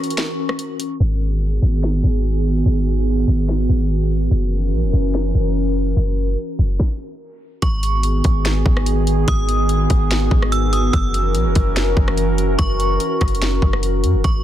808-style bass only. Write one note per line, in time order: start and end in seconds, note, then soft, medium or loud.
1.00 1.60 G#1 loud
1.62 2.02 G#1 loud
2.04 2.63 G#1 loud
2.66 3.25 G#1 loud
3.28 3.67 G#1 loud
3.69 4.29 G#1 loud
4.31 4.74 F#1 loud
4.73 4.84 A#1 medium
4.83 4.93 F#1 loud
4.93 5.33 F#1 loud
5.35 5.94 F#1 medium
5.97 6.36 F#1 loud
6.59 6.79 F#1 loud
7.62 8.22 G#1 loud
8.25 8.64 G#1 loud
8.66 9.25 G#1 loud
9.28 9.87 G#1 loud
9.90 10.30 G#1 loud
10.31 10.91 G#1 loud
10.93 11.36 F#1 loud
11.35 11.47 A#1 loud
11.45 11.55 F#1 loud
11.56 11.95 F#1 loud
11.97 12.56 F#1 loud
12.59 12.99 F#1 loud
13.21 13.61 F#1 loud
13.62 14.05 F#1 loud
14.04 14.16 F#2 medium
14.14 14.24 F#1 loud
14.24 14.44 G#1 loud